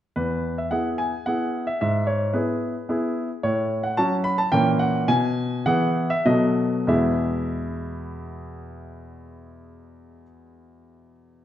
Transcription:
0.16 E2 B4
0.58 E5
0.71 B3 E4 G#4 F#5
0.98 G#5
1.26 B3 E4 G#4 F#5
1.67 E5
1.81 G#2 E5
2.07 C#5
2.33 B3 E4 G#4 B4
2.89 B3 E4 G#4
3.43 A2 C#5
3.83 F#5
3.97 F#3 C#4 F#4 A5
4.24 B5
4.38 A5
4.52 A#2 E3 C#4 A#4 G5
4.79 F#5
5.08 B2 G#5
5.66 E3 B3 G#4 F#5
6.10 E5
6.25 B2 F#3 B3 A4 D#5
6.87 E2 B2 G#3 B3 E4 G#4 E5

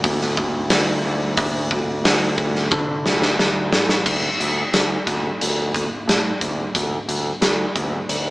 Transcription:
0.04 D2, kick, open hi-hat
0.21 snare
0.37 D2, kick
0.70 D2, snare, open hi-hat
1.05 D2
1.37 D2, kick, open hi-hat
1.71 D2, kick
2.04 D2, snare, open hi-hat
2.38 kick
2.55 snare
2.71 D3, kick, high tom
3.06 D2, snare
3.22 snare
3.39 D2, snare
3.73 A1, snare
3.89 snare
4.06 D2, kick, crash
4.40 D2, closed hi-hat
4.74 D2, snare, closed hi-hat
5.07 D2, kick, snare, closed hi-hat
5.41 D2, closed hi-hat
5.74 kick, closed hi-hat
6.08 A2, snare, closed hi-hat
6.41 D2, kick, closed hi-hat
6.75 D2, kick, closed hi-hat
7.08 D2, closed hi-hat
7.41 D2, snare, closed hi-hat
7.76 D2, kick, closed hi-hat
8.09 D2, closed hi-hat

